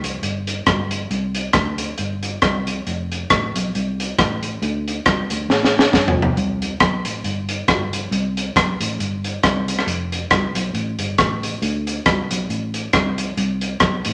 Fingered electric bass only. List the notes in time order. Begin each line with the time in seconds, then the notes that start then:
0.04 C2
0.22 G1
0.66 G1
1.10 C2
1.54 D2
1.99 G1
2.42 C2
2.87 F1
3.31 A1
3.56 B1
3.75 C2
4.19 A1
4.62 D2
5.06 C2
5.30 D2
5.49 A1
5.93 G1
6.36 C2
6.81 B1
7.05 A1
7.24 G1
7.69 G1
8.11 C2
8.56 B1
8.80 A1
8.99 G1
9.43 C2
9.87 F1
10.31 C2
10.55 B1
10.73 A1
10.98 G1
11.19 A1
11.62 D2
12.06 C2
12.31 B1
12.49 A1
12.94 C2
13.37 C2
13.81 B1
14.06 A1